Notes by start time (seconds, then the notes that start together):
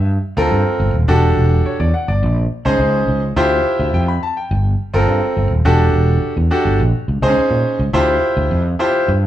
Already playing: G2
0.37 D2 C4 F4 A4 A#4
0.51 G2
0.80 G1
0.94 D#1
1.08 E1 D4 F#4 G4 A4
1.37 E1
1.65 C#5, muted fretless electric bass stroke
1.80 E2 D5
1.94 F#5
2.08 G1 D5
2.23 A#1
2.65 C#2 C#4 D#4 G#4 C5
2.80 C#2
3.08 C#2
3.36 D2 E4 F4 G4 C5
3.79 D2 E5
3.94 F2 G5
4.08 B5
4.23 A5
4.37 G5
4.51 G1
4.94 G1 C4 F4 A4 A#4
5.08 G2
5.37 G1
5.51 D#1
5.65 E1 D4 F#4 G4 A4
5.94 E1
6.22 muted fretless electric bass stroke
6.37 E2
6.51 D4 F#4 G4 A4
6.65 G1
6.80 A#1
7.08 C#2
7.22 C#2 C4 D#4 G#4 C5
7.29 C#4
7.51 A#2
7.79 C#2
7.93 D2 E4 F4 G4 C5
8.37 D2
8.51 F2
8.79 E4 F4 G4 C5
9.08 G2